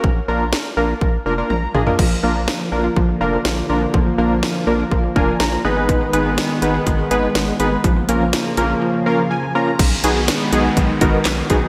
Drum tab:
CC |----------------|x---------------|----------------|----------------|
HH |----------------|----------------|----------------|x-x-x-x-x-x-x-x-|
CP |----------------|----------------|----------------|----------------|
SD |----o-----------|----o-------o---|----o-------o---|----o-------o---|
T1 |------------o---|----------------|----------------|----------------|
T2 |--------------o-|----------------|----------------|----------------|
FT |---------------o|----------------|----------------|----------------|
BD |o-------o-------|o-------o-------|o-------o-o-----|o-------o-------|

CC |----------------|x---------------|
HH |x-x-x-x---------|x-x-x-x-x-x-x-x-|
CP |----------------|------------x---|
SD |----o-----------|----o-------o---|
T1 |----------------|----------------|
T2 |----------------|----------------|
FT |----------------|----------------|
BD |o---------------|o-------o-o---o-|